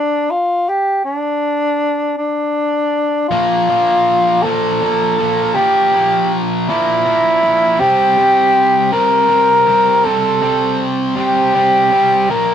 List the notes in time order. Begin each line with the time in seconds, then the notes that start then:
Already playing: D4
0.31 F4
0.69 G4
1.05 D4
2.17 D4
3.29 A#2 F3 A#3 F4
3.68 A#2 F3 A#3
4.42 A#2 F3 A#3 A4
4.81 A#2 F3 A#3
5.19 A#2 F3 A#3
5.55 A#2 F3 A#3 G4
5.94 A#2 F3 A#3
6.68 A#2 F3 A#3 E4
7.05 A#2 F3 A#3
7.42 A#2 F3 A#3
7.80 C3 G3 C4 G4
8.17 C3 G3 C4
8.92 C3 G3 C4 A#4
9.29 C3 G3 C4
9.66 C3 G3 C4
10.04 C3 G3 C4 A4
10.41 C3 G3 C4
11.16 C3 G3 C4 G4
11.54 C3 G3 C4
11.91 C3 G3 C4
12.29 A#2 F3 A#3 A#4